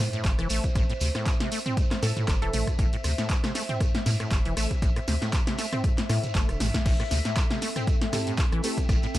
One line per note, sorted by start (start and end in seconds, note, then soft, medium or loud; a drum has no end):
0.00 6.87 C5 medium
0.00 9.19 E5 loud
0.13 0.26 A2 loud
0.13 closed hi-hat soft
0.13 shekere soft
0.24 0.34 G1 medium
0.24 0.32 G2 medium
0.24 kick loud
0.24 clap loud
0.24 closed hi-hat medium
0.24 shekere soft
0.38 0.47 E1 medium
0.38 0.48 E3 loud
0.38 cross-stick medium
0.38 closed hi-hat soft
0.38 shekere soft
0.50 0.60 A1 medium
0.50 0.66 A3 loud
0.50 open hi-hat loud
0.50 shekere medium
0.64 0.70 A1 loud
0.64 kick medium
0.64 closed hi-hat soft
0.64 shekere soft
0.75 0.85 A1 loud
0.75 0.83 A2 medium
0.75 kick loud
0.75 cross-stick medium
0.75 closed hi-hat medium
0.75 shekere medium
0.89 0.93 A2 loud
0.89 closed hi-hat soft
0.89 shekere soft
1.00 1.11 D2 medium
1.00 1.09 C3 medium
1.00 open hi-hat loud
1.00 shekere medium
1.15 1.28 A2 loud
1.15 cross-stick medium
1.15 snare medium
1.15 closed hi-hat soft
1.15 shekere soft
1.26 1.34 G2 medium
1.26 kick loud
1.26 clap loud
1.26 closed hi-hat medium
1.26 shekere soft
1.40 1.50 C3 medium
1.40 snare medium
1.40 closed hi-hat soft
1.40 shekere soft
1.52 1.60 A3 loud
1.52 open hi-hat loud
1.52 shekere medium
1.66 1.79 C4 loud
1.66 closed hi-hat soft
1.66 mid tom medium
1.66 shekere soft
1.77 1.82 G3 medium
1.77 kick loud
1.77 closed hi-hat medium
1.77 shekere soft
1.91 1.95 A2 medium
1.91 cross-stick medium
1.91 snare medium
1.91 clap soft
1.91 closed hi-hat soft
1.91 shekere soft
2.03 2.07 A2 loud
2.03 2.12 A2 medium
2.03 2.41 A4 medium
2.03 snare medium
2.03 open hi-hat loud
2.03 shekere medium
2.16 2.30 A2 loud
2.16 closed hi-hat soft
2.16 mid tom medium
2.16 shekere soft
2.28 2.38 G1 medium
2.28 2.36 G2 medium
2.28 kick loud
2.28 cross-stick medium
2.28 clap loud
2.28 closed hi-hat medium
2.28 shekere soft
2.42 2.50 E1 medium
2.42 2.52 E3 loud
2.42 3.13 A4 loud
2.42 closed hi-hat soft
2.42 shekere soft
2.53 2.63 A1 medium
2.53 2.69 A3 loud
2.53 mid tom medium
2.53 open hi-hat loud
2.53 shekere medium
2.67 2.74 A1 loud
2.67 kick medium
2.67 cross-stick medium
2.67 closed hi-hat soft
2.67 shekere soft
2.78 2.89 A1 loud
2.78 2.87 A2 medium
2.78 kick loud
2.78 closed hi-hat medium
2.78 shekere soft
2.93 2.97 A2 loud
2.93 closed hi-hat soft
2.93 shekere soft
3.04 3.14 D2 medium
3.04 3.12 C3 medium
3.04 cross-stick medium
3.04 open hi-hat loud
3.04 shekere medium
3.18 3.31 A2 loud
3.18 snare medium
3.18 closed hi-hat soft
3.18 shekere soft
3.30 3.37 G2 medium
3.30 kick loud
3.30 clap loud
3.30 closed hi-hat medium
3.30 shekere medium
3.44 3.53 C3 medium
3.44 cross-stick medium
3.44 snare medium
3.44 closed hi-hat soft
3.44 shekere soft
3.55 3.63 A3 loud
3.55 snare medium
3.55 open hi-hat loud
3.55 shekere medium
3.69 3.82 C4 loud
3.69 closed hi-hat soft
3.69 mid tom medium
3.69 shekere soft
3.80 3.85 G3 medium
3.80 kick loud
3.80 cross-stick medium
3.80 closed hi-hat medium
3.80 shekere soft
3.94 3.98 A2 medium
3.94 snare medium
3.94 closed hi-hat soft
3.94 shekere soft
4.06 4.16 A2 medium
4.06 4.11 A2 loud
4.06 snare medium
4.06 mid tom medium
4.06 open hi-hat loud
4.06 shekere medium
4.20 4.33 A2 loud
4.20 cross-stick medium
4.20 closed hi-hat soft
4.20 shekere soft
4.31 4.41 G1 medium
4.31 4.39 G2 medium
4.31 kick loud
4.31 clap loud
4.31 closed hi-hat medium
4.31 shekere medium
4.45 4.53 E1 loud
4.45 4.55 E3 loud
4.45 closed hi-hat soft
4.45 shekere soft
4.57 4.67 A1 medium
4.57 4.72 A3 loud
4.57 cross-stick medium
4.57 open hi-hat loud
4.57 shekere medium
4.71 4.77 A1 loud
4.71 kick medium
4.71 closed hi-hat soft
4.71 shekere soft
4.82 4.92 A1 loud
4.82 4.90 A2 medium
4.82 kick loud
4.82 closed hi-hat medium
4.82 shekere medium
4.96 5.00 A2 loud
4.96 cross-stick medium
4.96 closed hi-hat soft
4.96 shekere soft
5.08 5.18 D2 medium
5.08 5.15 C3 medium
5.08 snare medium
5.08 open hi-hat loud
5.08 shekere medium
5.22 5.35 A2 loud
5.22 snare medium
5.22 closed hi-hat soft
5.22 shekere soft
5.33 5.41 G2 medium
5.33 kick loud
5.33 cross-stick medium
5.33 clap loud
5.33 closed hi-hat medium
5.33 shekere soft
5.47 5.57 C3 medium
5.47 snare medium
5.47 closed hi-hat soft
5.47 shekere soft
5.58 5.66 A3 loud
5.58 snare medium
5.58 open hi-hat loud
5.58 shekere medium
5.73 5.85 C4 loud
5.73 cross-stick medium
5.73 closed hi-hat soft
5.73 mid tom medium
5.73 shekere soft
5.84 5.89 G3 medium
5.84 kick loud
5.84 closed hi-hat medium
5.84 shekere soft
5.98 6.02 A2 medium
5.98 snare medium
5.98 clap soft
5.98 closed hi-hat soft
5.98 shekere soft
6.09 6.25 A2 loud
6.09 6.19 A2 medium
6.09 cross-stick medium
6.09 snare medium
6.09 open hi-hat loud
6.09 shekere medium
6.24 6.27 E3 medium
6.24 closed hi-hat soft
6.24 mid tom medium
6.24 shekere soft
6.35 6.45 G1 medium
6.35 6.50 A3 loud
6.35 kick loud
6.35 clap loud
6.35 closed hi-hat medium
6.35 shekere medium
6.49 6.57 E1 loud
6.49 6.62 D3 medium
6.49 cross-stick medium
6.49 closed hi-hat soft
6.49 shekere soft
6.60 6.70 A1 medium
6.60 6.68 C3 loud
6.60 snare medium
6.60 mid tom medium
6.60 open hi-hat loud
6.60 shekere medium
6.74 6.78 A2 loud
6.74 kick medium
6.74 snare loud
6.74 closed hi-hat soft
6.74 shekere soft
6.86 6.95 A1 loud
6.86 6.93 A2 medium
6.86 9.19 C4 loud
6.86 9.19 A4 medium
6.86 kick loud
6.86 closed hi-hat medium
6.86 crash loud
6.86 shekere medium
7.00 7.04 A2 loud
7.00 cross-stick medium
7.00 closed hi-hat soft
7.00 shekere soft
7.11 7.21 D2 loud
7.11 7.19 C3 medium
7.11 snare medium
7.11 open hi-hat loud
7.11 shekere medium
7.19 9.19 A4 medium
7.19 9.19 G5 medium
7.25 7.38 A2 loud
7.25 snare medium
7.25 closed hi-hat medium
7.25 shekere soft
7.36 7.44 G2 medium
7.36 kick loud
7.36 cross-stick medium
7.36 clap loud
7.36 closed hi-hat medium
7.36 shekere medium
7.51 7.60 C3 medium
7.51 snare medium
7.51 closed hi-hat soft
7.51 shekere soft
7.62 7.70 A3 loud
7.62 snare medium
7.62 open hi-hat loud
7.62 shekere medium
7.76 7.89 C4 loud
7.76 cross-stick medium
7.76 closed hi-hat medium
7.76 mid tom medium
7.76 shekere soft
7.87 7.92 G3 medium
7.87 kick loud
7.87 closed hi-hat medium
7.87 shekere medium
8.01 8.05 A2 medium
8.01 snare medium
8.01 closed hi-hat soft
8.13 8.17 A2 loud
8.13 8.30 C4 loud
8.13 8.30 E4 medium
8.13 8.30 G4 medium
8.13 8.30 A4 loud
8.13 cross-stick medium
8.13 snare medium
8.13 mid tom medium
8.13 open hi-hat loud
8.13 shekere loud
8.27 8.40 A2 loud
8.27 closed hi-hat medium
8.27 shekere soft
8.37 8.46 G2 medium
8.37 kick loud
8.37 clap loud
8.37 closed hi-hat medium
8.37 shekere medium
8.52 8.60 A1 medium
8.52 8.62 E3 loud
8.52 cross-stick medium
8.52 closed hi-hat soft
8.64 8.79 A3 loud
8.64 8.75 C4 loud
8.64 8.75 E4 medium
8.64 8.75 G4 medium
8.64 8.75 A4 loud
8.64 open hi-hat loud
8.64 shekere medium
8.78 8.84 A1 loud
8.78 kick medium
8.78 closed hi-hat medium
8.78 shekere soft
8.89 8.99 A1 loud
8.89 8.97 A2 medium
8.89 kick loud
8.89 cross-stick medium
8.89 closed hi-hat medium
8.89 shekere medium
9.02 9.07 A2 loud
9.02 closed hi-hat soft
9.02 shekere soft
9.15 9.19 D2 medium
9.15 9.19 C3 medium
9.15 snare medium
9.15 open hi-hat loud
9.15 shekere medium